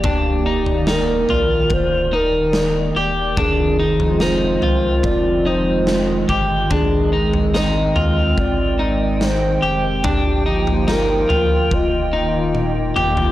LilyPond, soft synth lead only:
\new Staff \with { instrumentName = "Soft synth lead" } { \time 4/4 \key f \dorian \tempo 4 = 72 g'4 bes'4 c''8 bes'4 r8 | aes'4 c''4 d''8 c''4 r8 | aes'4 ees''4 d''4 c''8. r16 | g'4 bes'4 ees''4. r8 | }